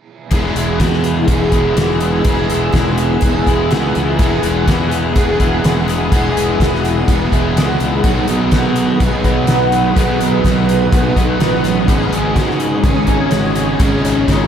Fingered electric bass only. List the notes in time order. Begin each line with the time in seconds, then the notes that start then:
0.32 E1
0.56 E1
0.80 E2
1.28 E1
1.77 E1
2.25 E1
2.50 E1
2.74 E1
3.23 E1
3.47 E1
3.73 C#2
3.96 C#2
4.20 E1
4.44 E1
4.68 E2
5.16 E1
5.65 E1
6.12 E1
6.37 E1
6.60 E1
7.08 E1
7.32 E1
7.56 C#2
7.81 C#2
8.05 B1
8.29 B1
8.53 B2
9.01 B1
9.50 B1
9.97 B1
10.22 B1
10.44 B1
10.93 B1
11.16 B1
11.41 A1
11.65 A1
11.89 G#1
12.13 G#1
12.36 G#2
12.84 G#1
13.33 G#1
13.80 G#1
14.05 G#1
14.28 G#1